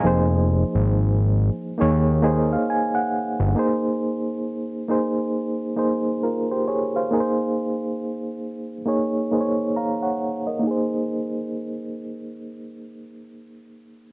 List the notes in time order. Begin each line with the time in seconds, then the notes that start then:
Already playing: D#5 G#5
0.04 F1 F3 A#3 D#4 G#4 C5
0.75 G#1
1.78 D#2 A#3 D#4 G#4 C#5
2.22 A#3 D#4 G#4 C5 D#5
2.53 F5
2.70 G#5
2.95 F#5
3.40 G1
3.56 A#3 D#4 G#4 C5
4.89 A#3 D#4 G#4 C5
5.76 A#3 D#4 G#4 C5
6.23 F4 A#4
6.51 G4 C5
6.68 G#4 C#5
6.96 C5 F5
7.11 A#3 D#4 G#4 A#4
7.20 C5
8.86 A#3 D#4 G#4 C#5
9.31 A#3 D#4 G#4 C5
9.40 C#5
9.76 F5 A#5
10.03 C#5 F#5
10.47 A#4 D#5
10.60 A#3 D#4
10.67 G#4 C5